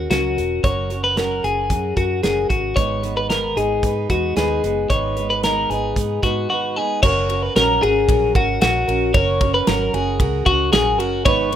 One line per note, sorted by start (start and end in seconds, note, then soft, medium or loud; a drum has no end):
0.00 0.10 F#4 soft
0.00 0.10 A#4 medium
0.10 0.39 C#2 medium
0.10 0.37 F#3 medium
0.10 0.37 C#4 medium
0.10 0.61 F#4 medium
0.10 0.38 F#4 medium
0.10 0.36 A#4 medium
0.10 snare loud
0.10 closed hi-hat medium
0.37 0.60 E1 medium
0.37 0.63 C#4 soft
0.37 0.64 F#4 soft
0.37 0.64 A#4 medium
0.37 closed hi-hat medium
0.63 1.40 F#1 loud
0.63 0.90 F#3 medium
0.63 0.91 C#4 medium
0.63 0.90 F#4 medium
0.63 0.89 A#4 medium
0.63 1.02 C#5 medium
0.63 kick loud
0.63 closed hi-hat medium
0.90 1.16 C#4 soft
0.90 1.16 F#4 soft
0.90 1.17 A#4 medium
0.90 closed hi-hat medium
1.04 1.17 B4 medium
1.16 1.43 F#3 medium
1.16 1.44 C#4 medium
1.16 1.43 F#4 loud
1.16 1.44 A#4 medium
1.16 1.42 A#4 medium
1.16 snare medium
1.16 closed hi-hat medium
1.43 1.72 F#1 medium
1.43 1.70 C#4 soft
1.43 1.70 F#4 medium
1.43 1.94 G#4 medium
1.43 1.70 A#4 medium
1.43 closed hi-hat medium
1.70 1.93 F#2 loud
1.70 1.97 F#3 medium
1.70 1.97 C#4 medium
1.70 1.97 F#4 medium
1.70 1.95 A#4 medium
1.70 kick medium
1.70 closed hi-hat medium
1.96 2.20 F#2 medium
1.96 2.23 C#4 soft
1.96 2.23 F#4 medium
1.96 2.23 A#4 medium
1.96 kick medium
1.96 closed hi-hat medium
2.23 2.46 F#1 medium
2.23 2.50 F#3 medium
2.23 2.50 C#4 medium
2.23 2.50 F#4 medium
2.23 2.49 G#4 medium
2.23 2.49 A#4 medium
2.23 snare loud
2.23 closed hi-hat medium
2.50 2.73 G#1 medium
2.50 2.77 C#4 soft
2.50 2.77 F#4 medium
2.50 2.77 A#4 medium
2.50 kick medium
2.50 closed hi-hat medium
2.76 3.53 G#1 loud
2.76 3.03 G#2 medium
2.76 3.03 D#3 medium
2.76 3.04 G#3 medium
2.76 3.04 B3 medium
2.76 3.03 D#4 medium
2.76 3.02 B4 medium
2.76 3.14 C#5 medium
2.76 kick medium
2.76 closed hi-hat medium
3.03 3.29 G#3 soft
3.03 3.29 B3 soft
3.03 3.30 D#4 medium
3.03 3.30 B4 medium
3.03 closed hi-hat medium
3.17 3.29 B4 medium
3.29 3.56 G#2 medium
3.29 3.57 D#3 medium
3.29 3.57 G#3 medium
3.29 3.57 B3 medium
3.29 3.56 D#4 medium
3.29 3.57 A#4 medium
3.29 3.55 B4 loud
3.29 snare medium
3.29 closed hi-hat medium
3.56 3.79 G#1 medium
3.56 3.82 G#3 soft
3.56 3.83 B3 soft
3.56 3.84 D#4 medium
3.56 4.07 G#4 medium
3.56 3.83 B4 soft
3.56 closed hi-hat medium
3.83 4.06 G#2 medium
3.83 4.10 G#3 medium
3.83 4.10 B3 medium
3.83 4.10 D#4 medium
3.83 4.08 B4 medium
3.83 kick medium
3.83 closed hi-hat medium
4.10 4.33 E2 medium
4.10 4.36 G#3 soft
4.10 4.36 B3 medium
4.10 4.37 D#4 medium
4.10 4.36 F#4 medium
4.10 4.37 B4 medium
4.10 kick medium
4.10 closed hi-hat medium
4.36 4.59 D#2 medium
4.36 4.63 G#2 medium
4.36 4.63 D#3 medium
4.36 4.64 G#3 medium
4.36 4.64 B3 medium
4.36 4.63 D#4 medium
4.36 4.87 G#4 medium
4.36 4.62 B4 medium
4.36 snare loud
4.36 closed hi-hat medium
4.63 4.86 F#1 medium
4.63 4.89 G#3 soft
4.63 4.90 B3 medium
4.63 4.90 D#4 soft
4.63 4.90 B4 medium
4.63 closed hi-hat medium
4.90 5.66 G#1 loud
4.90 5.17 G#2 medium
4.90 5.17 D#3 medium
4.90 5.17 G#3 medium
4.90 5.17 B3 medium
4.90 5.17 D#4 medium
4.90 5.15 B4 medium
4.90 5.27 C#5 medium
4.90 kick medium
4.90 closed hi-hat medium
5.17 5.43 G#3 soft
5.17 5.44 B3 soft
5.17 5.44 D#4 soft
5.17 5.43 B4 medium
5.17 closed hi-hat medium
5.30 5.43 B4 medium
5.43 5.70 G#2 medium
5.43 5.70 D#3 medium
5.43 5.71 G#3 medium
5.43 5.71 B3 loud
5.43 5.70 D#4 medium
5.43 5.70 A#4 medium
5.43 5.69 B4 medium
5.43 snare loud
5.43 closed hi-hat medium
5.70 5.92 G#1 medium
5.70 5.96 G#3 soft
5.70 5.97 B3 soft
5.70 5.97 D#4 soft
5.70 6.20 G#4 medium
5.70 5.96 B4 soft
5.70 closed hi-hat medium
5.96 6.19 G#2 medium
5.96 6.23 G#3 medium
5.96 6.24 B3 medium
5.96 6.23 D#4 medium
5.96 6.22 B4 medium
5.96 kick medium
5.96 closed hi-hat medium
6.23 6.46 G#2 medium
6.23 6.50 G#3 soft
6.23 6.50 B3 medium
6.23 6.50 D#4 medium
6.23 6.49 F#4 medium
6.23 6.50 B4 medium
6.23 kick medium
6.23 closed hi-hat medium
6.50 6.76 G#2 medium
6.50 6.77 D#3 medium
6.50 6.77 G#3 medium
6.50 6.77 B3 medium
6.50 6.76 D#4 medium
6.50 6.76 F#4 medium
6.50 6.75 B4 medium
6.76 7.02 G#3 soft
6.76 7.03 B3 soft
6.76 7.03 D#4 soft
6.76 7.02 G#4 medium
6.76 7.03 B4 medium
7.03 7.48 F#1 loud
7.03 7.29 F#3 medium
7.03 7.30 C#4 medium
7.03 7.30 F#4 medium
7.03 7.28 A#4 medium
7.03 7.43 C#5 medium
7.03 kick loud
7.03 crash medium
7.29 7.55 C#4 soft
7.29 7.56 F#4 medium
7.29 7.56 A#4 medium
7.29 ride medium
7.43 7.56 B4 medium
7.55 7.78 A#1 medium
7.55 7.82 F#3 medium
7.55 7.83 C#4 medium
7.55 7.83 F#4 medium
7.55 7.82 A#4 medium
7.55 7.81 A#4 medium
7.55 snare loud
7.55 ride medium
7.82 8.05 G#1 medium
7.82 8.08 C#4 soft
7.82 8.09 F#4 medium
7.82 8.32 G#4 medium
7.82 8.09 A#4 medium
7.82 ride medium
8.08 8.31 A#1 medium
8.08 8.35 F#3 medium
8.08 8.35 C#4 medium
8.08 8.35 F#4 medium
8.08 8.34 A#4 medium
8.08 kick medium
8.08 ride medium
8.35 8.58 G#1 medium
8.35 8.61 C#4 medium
8.35 8.61 F#4 medium
8.35 8.61 A#4 medium
8.35 kick loud
8.35 ride medium
8.61 8.84 A#1 loud
8.61 8.88 F#3 medium
8.61 8.88 C#4 medium
8.61 9.11 F#4 medium
8.61 8.89 F#4 medium
8.61 8.86 A#4 medium
8.61 snare loud
8.61 ride medium
8.88 9.11 A#1 medium
8.88 9.14 C#4 medium
8.88 9.15 F#4 medium
8.88 9.14 A#4 medium
8.88 ride medium
9.14 9.59 F#1 loud
9.14 9.41 F#3 medium
9.14 9.41 C#4 medium
9.14 9.42 F#4 medium
9.14 9.40 A#4 medium
9.14 9.52 C#5 medium
9.14 kick loud
9.14 ride medium
9.41 9.67 C#4 medium
9.41 9.67 F#4 soft
9.41 9.67 A#4 medium
9.41 kick medium
9.41 ride medium
9.54 9.68 B4 medium
9.67 9.90 G#1 medium
9.67 9.94 F#3 medium
9.67 9.94 C#4 medium
9.67 9.93 F#4 medium
9.67 9.94 A#4 medium
9.67 9.92 A#4 loud
9.67 snare loud
9.67 ride medium
9.93 10.21 F#1 medium
9.93 10.18 C#4 medium
9.93 10.19 F#4 medium
9.93 10.43 G#4 medium
9.93 10.20 A#4 medium
9.93 ride medium
10.18 10.42 C#2 loud
10.18 10.46 F#3 medium
10.18 10.46 C#4 medium
10.18 10.46 F#4 medium
10.18 10.44 A#4 medium
10.18 kick medium
10.18 ride medium
10.45 10.69 C#2 medium
10.45 10.72 C#4 medium
10.45 10.72 F#4 medium
10.45 10.72 A#4 medium
10.45 kick medium
10.45 ride soft
10.72 10.99 A#1 medium
10.72 10.99 F#3 medium
10.72 10.99 C#4 medium
10.72 10.99 F#4 medium
10.72 10.99 G#4 medium
10.72 10.97 A#4 medium
10.72 snare loud
10.72 ride medium
10.98 11.26 F#1 medium
10.98 11.25 C#4 soft
10.98 11.25 F#4 medium
10.98 11.26 F#4 medium
10.98 11.25 A#4 medium
10.98 ride medium
11.25 11.56 G#1 loud
11.25 11.51 G#2 medium
11.25 11.52 D#3 medium
11.25 11.52 G#3 medium
11.25 11.52 B3 medium
11.25 11.51 D#4 medium
11.25 11.49 B4 loud
11.25 11.56 C#5 loud
11.25 kick loud
11.25 ride medium
11.51 11.56 B4 medium
11.51 ride medium